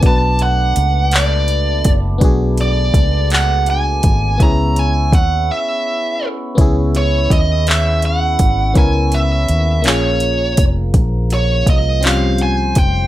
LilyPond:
<<
  \new Staff \with { instrumentName = "Lead electric guitar" } { \time 6/8 \key cis \phrygian \tempo 4. = 55 a''8 fis''4 d''4 r8 | r8 d''4 fis''8 gis''4 | ais''8 gis''8 fis''8 e''4 r8 | r8 cis''8 dis''8 e''8 fis''4 |
gis''8 e''4 cis''4 r8 | r8 cis''8 dis''8 eis''8 gis''8 g''8 | }
  \new Staff \with { instrumentName = "FM electric piano" } { \time 6/8 \key cis \phrygian <b d' fis' b'>2. | <b d' fis' gis'>2. | <b cis' e' gis'>2. | <b cis' e' gis'>2. |
<b cis' e' ais'>4. <ais cis' eis' gis'>4.~ | <ais cis' eis' gis'>4. <g bis cis' eis'>4. | }
  \new Staff \with { instrumentName = "Tonewheel organ" } { \time 6/8 \key cis \phrygian << { <a d'>2.~ | <a d'>2. | <b cis'>2.~ | <b cis'>2.~ |
<b cis'>4. eis4.~ | eis2. | } \\ { b4. b4.~ | b2. | e'2.~ | e'2.~ |
e'4. ais4.~ | ais4. bis'4. | } >> }
  \new Staff \with { instrumentName = "Fingered electric bass" } { \clef bass \time 6/8 \key cis \phrygian b,,4 cis,4. fis,,8 | b,,4 cis,4. gis,,8 | cis,4 dis,8 r4. | cis,4 dis,4. gis,,8 |
cis,4 dis,8 ais,,4 eis,,8 | ais,,4 bis,,4. eis,,8 | }
  \new DrumStaff \with { instrumentName = "Drums" } \drummode { \time 6/8 <hh bd>8 hh8 hh8 <hc hh>8 hh8 <hh bd>8 | <hh bd>8 hh8 <hh bd>8 <hc hh>8 hh8 <hh bd>8 | <hh bd>8 hh8 <hh bd>8 r4. | <hh bd>8 hh8 <hh bd>8 <hc hh>8 hh8 <hh bd>8 |
<hh bd>8 hh8 hh8 <hc hh>8 hh8 <hh bd>8 | <hh bd>8 hh8 <hh bd>8 <hc hh>8 hh8 <hh bd>8 | }
>>